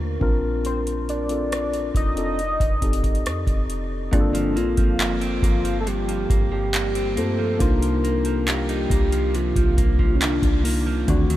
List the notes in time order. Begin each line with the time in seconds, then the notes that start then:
Already playing: D#2 A#3 D4 F4 A#4
0.20 A#1 C4 D4 F4 A#4, kick
0.65 C5, closed hi-hat
0.87 closed hi-hat
1.09 D5, closed hi-hat
1.29 C4 D4 F4 A4, closed hi-hat
1.52 cross-stick, closed hi-hat
1.73 closed hi-hat
1.95 F1 D#5, kick, closed hi-hat
2.16 C4 D4 F4 A4, closed hi-hat
2.39 closed hi-hat
2.60 F1, kick, closed hi-hat
2.81 C4 D#4 G4 A4, kick, closed hi-hat
2.93 closed hi-hat
3.04 kick, closed hi-hat
3.15 closed hi-hat
3.26 F2, cross-stick, closed hi-hat
3.47 F1, kick, closed hi-hat
3.70 closed hi-hat
4.12 G1 G2 A#3 C4 D4 F4 G#4 D5, kick, closed hi-hat
4.20 A4
4.34 F3, closed hi-hat
4.56 A#1 A#3 F4, closed hi-hat
4.77 G1 F3, kick, closed hi-hat
4.99 A#3, clap, closed hi-hat
5.21 C4, closed hi-hat
5.43 G1 A#3 F4, kick, closed hi-hat
5.65 F3, closed hi-hat
5.80 A4
5.87 G2 G4, closed hi-hat
6.08 F3, closed hi-hat
6.30 G1 A#3, kick, closed hi-hat
6.52 F3 G4
6.73 A#3, clap, closed hi-hat
6.95 C4, closed hi-hat
7.16 G2 A#3 C4 F4 A4 C5, closed hi-hat
7.39 F3
7.59 C2 C3 A#3 D4 D#4 F4 A#4, kick, closed hi-hat
7.82 F3, closed hi-hat
8.04 A#3, closed hi-hat
8.25 F3, closed hi-hat
8.47 A#3 G4, clap, closed hi-hat
8.69 D#4, closed hi-hat
8.90 C2 A#3, kick, closed hi-hat
9.12 F3, closed hi-hat
9.34 C3 F4, closed hi-hat
9.56 C2 F3, kick, closed hi-hat
9.78 A#3, kick, closed hi-hat
9.99 F3, kick
10.15 C#4
10.21 A#3 D4, clap, closed hi-hat
10.43 C2, kick, closed hi-hat
10.64 A#3 D4 D#4 F4, open hi-hat
10.87 F3
11.07 D2 D3 D#3 A3 C4 D4 F#4, kick, closed hi-hat
11.30 F#3, closed hi-hat